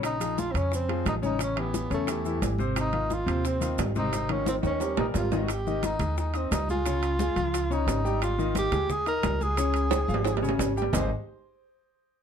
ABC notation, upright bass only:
X:1
M:4/4
L:1/8
Q:1/4=176
K:Ab
V:1 name="Upright bass" clef=bass
B,,,3 F,,3 =A,,,2- | =A,,,3 =E,,3 _A,,,2- | A,,,3 E,,3 A,,,2- | A,,,3 E,,2 B,,, A,,,2- |
A,,,3 E,,3 D,,2- | D,,3 D,,3 A,,,2- | A,,,3 E,,3 D,,2- | D,,3 A,,,3 A,,,2 |
A,,, z6 z |]